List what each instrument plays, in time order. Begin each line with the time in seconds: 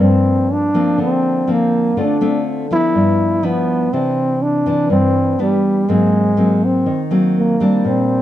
Already playing: nylon-string guitar F3 A#3 C4
0.00 nylon-string guitar G2, trombone C4
0.53 trombone D4
0.74 nylon-string guitar F3 A#3 C4
0.98 nylon-string guitar D3
1.03 trombone C4
1.47 nylon-string guitar F3 A#3 C4
1.52 trombone A#3
1.97 nylon-string guitar D3 A3 C4 F4
2.04 trombone D4
2.21 nylon-string guitar A3 C4 F4
2.71 nylon-string guitar F3 B3 E4, trombone E4
2.95 nylon-string guitar G2
3.43 nylon-string guitar F3 B3 E4, trombone B3
3.93 nylon-string guitar C3 E3 D4, trombone C4
4.43 trombone D4
4.66 nylon-string guitar E3 D4
4.90 nylon-string guitar G2, trombone C4
5.39 nylon-string guitar E3 B3 D4, trombone G3
5.88 nylon-string guitar G#2 F#3 A#3 C4, trombone G#3
6.37 nylon-string guitar F#3 A#3 C4
6.65 trombone C4
6.86 nylon-string guitar D#3
7.11 nylon-string guitar F#3 A#3 C4
7.39 trombone A#3
7.60 nylon-string guitar G3 C4 D4
7.84 nylon-string guitar A#2, trombone C4